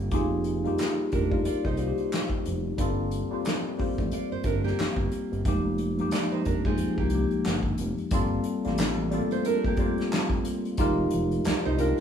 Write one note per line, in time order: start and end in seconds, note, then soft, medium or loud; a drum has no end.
0.00 0.10 G1 medium
0.00 0.14 G3 medium
0.00 0.12 A#3 medium
0.00 0.14 C4 medium
0.00 0.13 F4 medium
0.00 0.12 G4 medium
0.00 0.13 A#4 medium
0.11 0.68 F1 loud
0.11 0.52 A#3 medium
0.11 0.52 D#4 medium
0.11 0.53 F4 medium
0.11 0.52 G4 medium
0.11 0.53 G#4 loud
0.11 kick loud
0.11 closed hi-hat medium
0.44 closed hi-hat medium
0.64 1.14 G3 medium
0.64 1.14 A#3 medium
0.64 1.15 D#4 medium
0.64 1.15 F4 medium
0.64 1.16 G4 medium
0.64 closed hi-hat soft
0.78 snare medium
0.78 clap medium
0.78 closed hi-hat medium
1.12 1.41 F1 medium
1.12 1.44 D4 medium
1.12 1.44 A#4 medium
1.12 kick medium
1.12 closed hi-hat medium
1.30 1.69 G3 medium
1.30 1.69 A#3 medium
1.30 1.70 D#4 medium
1.30 1.70 F4 medium
1.30 1.71 A#4 medium
1.30 kick medium
1.45 1.54 C2 soft
1.45 1.64 F4 medium
1.45 1.64 D5 medium
1.45 closed hi-hat medium
1.65 1.93 C2 medium
1.65 2.61 D#4 medium
1.65 2.61 C5 medium
1.65 kick medium
1.77 2.58 G3 medium
1.77 2.59 A#3 medium
1.77 2.59 D#4 medium
1.77 2.60 F4 medium
1.77 1.87 F#4 medium
1.77 closed hi-hat medium
1.87 2.63 G4 medium
1.98 closed hi-hat soft
2.12 snare medium
2.12 clap medium
2.12 closed hi-hat medium
2.30 kick medium
2.45 2.74 F1 medium
2.45 closed hi-hat medium
2.78 3.23 G1 loud
2.78 3.18 G3 loud
2.78 3.19 A#3 medium
2.78 3.19 C4 medium
2.78 3.19 F4 medium
2.78 3.20 A4 loud
2.78 kick loud
2.78 closed hi-hat medium
3.11 closed hi-hat medium
3.30 3.37 A1 soft
3.30 3.69 G3 medium
3.30 3.69 A#3 medium
3.30 3.70 C4 medium
3.30 3.70 F4 medium
3.30 3.71 C5 medium
3.45 snare medium
3.45 clap medium
3.45 closed hi-hat medium
3.77 3.88 A1 soft
3.77 4.83 G3 medium
3.77 4.84 A#3 medium
3.77 4.84 C4 medium
3.77 4.84 F4 medium
3.77 4.85 C5 medium
3.77 kick medium
3.77 open hi-hat soft
3.98 4.10 A1 medium
3.98 kick medium
3.98 closed hi-hat soft
4.12 4.31 F4 medium
4.12 4.31 D5 medium
4.12 closed hi-hat medium
4.32 4.37 G1 soft
4.32 4.45 C5 medium
4.44 4.73 G1 medium
4.44 4.64 D4 medium
4.44 4.64 A#4 medium
4.44 kick medium
4.44 closed hi-hat medium
4.64 5.41 A#3 medium
4.64 5.41 G4 medium
4.64 snare soft
4.79 4.87 G1 soft
4.79 snare loud
4.79 clap medium
4.79 closed hi-hat medium
4.96 5.09 G1 medium
4.96 kick medium
5.12 closed hi-hat medium
5.32 5.43 G1 medium
5.32 closed hi-hat soft
5.45 6.01 F1 medium
5.45 5.85 F3 medium
5.45 5.85 G#3 medium
5.45 5.86 A#3 medium
5.45 5.86 D#4 medium
5.45 5.87 G4 loud
5.45 kick loud
5.45 closed hi-hat medium
5.78 closed hi-hat medium
5.98 6.48 F3 medium
5.98 6.04 G3 medium
5.98 6.49 A#3 medium
5.98 6.49 D#4 medium
5.98 6.49 G4 medium
5.98 closed hi-hat soft
6.05 6.51 G#3 medium
6.11 6.31 F4 medium
6.11 6.31 D5 medium
6.11 snare loud
6.11 clap medium
6.11 closed hi-hat medium
6.32 6.45 D#4 medium
6.32 6.45 C5 medium
6.45 6.74 F1 medium
6.45 6.64 D4 medium
6.45 6.64 A#4 medium
6.45 kick medium
6.45 closed hi-hat medium
6.65 7.03 F3 medium
6.65 7.03 G#3 medium
6.65 7.03 A#3 medium
6.65 6.97 C4 medium
6.65 7.04 D#4 medium
6.65 7.04 F4 medium
6.65 6.97 G#4 medium
6.65 kick medium
6.78 6.87 C2 soft
6.78 closed hi-hat medium
6.98 7.26 C2 medium
6.98 7.95 A#3 medium
6.98 7.94 G4 medium
6.98 kick medium
7.10 7.92 F3 medium
7.10 7.92 G#3 medium
7.10 7.93 A#3 medium
7.10 closed hi-hat medium
7.14 7.93 D#4 medium
7.14 7.94 G4 medium
7.31 closed hi-hat soft
7.45 7.73 G1 medium
7.45 snare loud
7.45 clap medium
7.45 closed hi-hat medium
7.63 kick medium
7.78 7.95 F1 medium
7.78 closed hi-hat medium
7.98 closed hi-hat soft
8.11 8.40 G1 loud
8.11 8.52 G3 loud
8.11 8.52 A#3 medium
8.11 8.52 C4 medium
8.11 8.53 F4 medium
8.11 8.53 A4 loud
8.11 kick loud
8.11 closed hi-hat medium
8.44 closed hi-hat medium
8.64 9.21 A1 medium
8.64 9.03 G3 medium
8.64 9.03 A#3 medium
8.64 9.04 C4 medium
8.64 9.04 F4 medium
8.64 9.04 G4 medium
8.64 snare soft
8.64 closed hi-hat soft
8.78 snare loud
8.78 clap medium
8.78 closed hi-hat medium
9.11 9.66 G3 medium
9.11 9.19 A3 medium
9.11 9.67 C4 medium
9.11 9.67 F4 medium
9.11 9.68 A4 loud
9.11 closed hi-hat medium
9.18 9.70 A#3 medium
9.31 9.45 C5 medium
9.31 closed hi-hat soft
9.45 9.64 D4 medium
9.45 9.64 A#4 medium
9.45 closed hi-hat medium
9.64 10.62 A#3 medium
9.64 10.61 G4 medium
9.64 kick medium
9.77 10.59 G3 medium
9.77 9.86 A3 medium
9.77 10.59 C4 medium
9.77 10.60 F4 medium
9.77 kick medium
9.77 closed hi-hat medium
9.81 10.60 C5 medium
9.85 10.62 A#3 medium
9.98 snare soft
9.98 closed hi-hat soft
10.12 snare loud
10.12 clap medium
10.12 closed hi-hat medium
10.30 kick medium
10.45 closed hi-hat medium
10.65 closed hi-hat soft
10.77 11.07 F1 loud
10.77 11.58 G#3 loud
10.77 11.59 D#4 loud
10.77 11.59 F4 loud
10.77 11.59 G4 medium
10.77 11.60 A#4 loud
10.77 kick loud
10.77 closed hi-hat medium
11.11 11.41 F1 medium
11.11 closed hi-hat medium
11.31 closed hi-hat soft
11.45 11.54 C2 soft
11.45 11.64 F4 medium
11.45 11.64 D5 medium
11.45 snare loud
11.45 clap medium
11.45 closed hi-hat medium
11.65 11.93 C2 medium
11.65 11.78 D#4 medium
11.65 11.78 C5 medium
11.78 12.00 G#3 medium
11.78 11.97 D4 medium
11.78 12.00 D#4 medium
11.78 12.00 F4 medium
11.78 11.97 A#4 medium
11.78 12.00 A#4 loud
11.78 12.00 G5 medium
11.78 closed hi-hat medium